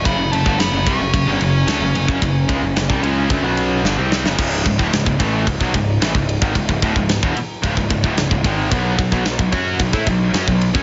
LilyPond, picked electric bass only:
\new Staff \with { instrumentName = "Picked electric bass" } { \clef bass \time 4/4 \key cis \minor \tempo 4 = 111 fis,,16 fis,,16 fis,,16 g,,16 fis,,16 fis,,16 bis,,16 fis,,16 fis,,16 g,,16 fis,,8 d,16 fis,,16 fis,,16 fis,,16 | fis,,8 cis,16 fis,,16 fis,,16 bis,,16 cis,8 d,16 b,,8. g,,16 bis,,8 fis,,16 | cis,,8 cis,,16 d,,16 cis,,16 cis,,16 a,,8 cis,,16 b,,16 cis,,8 a,,16 cis,,8 gis,,16 | cis,,16 cis,,16 d,,16 cis,,8 e,,16 r8 cis,,16 cis,,16 cis,,16 d,,16 cis,,16 cis,,16 gis,,8 |
b,,8 b,,16 b,,16 b,,16 b,,16 fis,8 b,,16 a,16 b,,8 fis,16 b,,8 fis,16 | }